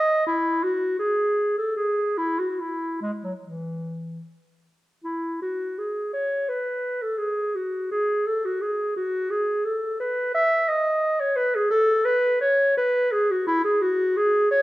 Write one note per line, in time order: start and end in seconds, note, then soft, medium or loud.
0.00 0.26 D#5 medium
0.27 0.65 E4 medium
0.63 0.99 F#4 medium
0.99 1.55 G#4 medium
1.58 1.76 A4 medium
1.76 2.19 G#4 medium
2.18 2.41 E4 medium
2.39 2.62 F#4 medium
2.61 3.01 E4 medium
3.02 3.11 G#3 medium
3.24 3.33 F#3 soft
3.43 4.22 E3 medium
5.04 5.39 E4 medium
5.42 5.80 F#4 medium
5.79 6.13 G#4 medium
6.14 6.50 C#5 medium
6.49 7.04 B4 medium
7.02 7.19 A4 medium
7.18 7.57 G#4 medium
7.55 7.91 F#4 medium
7.92 8.28 G#4 medium
8.27 8.47 A4 medium
8.45 8.63 F#4 medium
8.62 8.96 G#4 medium
8.97 9.32 F#4 medium
9.31 9.67 G#4 medium
9.65 10.00 A4 medium
10.00 10.34 B4 medium
10.35 10.70 E5 loud
10.69 11.22 D#5 medium
11.21 11.38 C#5 medium
11.37 11.57 B4 medium
11.55 11.70 G#4 medium
11.71 12.07 A4 loud
12.05 12.40 B4 medium
12.41 12.76 C#5 medium
12.77 13.13 B4 medium
13.12 13.32 G#4 medium
13.31 13.46 F#4 medium
13.47 13.64 E4 medium
13.65 13.83 G#4 medium
13.82 14.18 F#4 medium
14.17 14.51 G#4 medium
14.51 14.62 C#5 medium